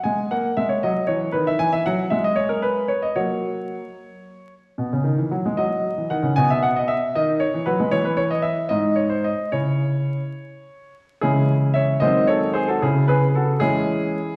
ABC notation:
X:1
M:6/8
L:1/16
Q:3/8=75
K:G#m
V:1 name="Grand piano"
g2 f2 e c d2 c2 B e | g e f2 e d c A B2 c d | c8- c2 z2 | z6 d4 f2 |
g e f d e2 d2 c2 B2 | [K:C#m] c B c d e2 d2 c ^B d2 | c8- c2 z2 | [EG]4 [ce]2 [^Bd]2 [Ac]2 [GB] [FA] |
[EG]2 [GB]2 [FA]2 [EG]6 |]
V:2 name="Grand piano" clef=bass
G,2 A,2 G,2 F,2 E,2 D,2 | E,2 F,2 G,8 | [F,A,F]6 z6 | B,, C, D, E, F, G, F,3 E, D, C, |
B,,6 D,3 E, F, G, | [K:C#m] E,6 G,,6 | [C,CE]6 z6 | [C,E,G,C]6 [D,F,G,^B,]6 |
C,6 [E,G,C]6 |]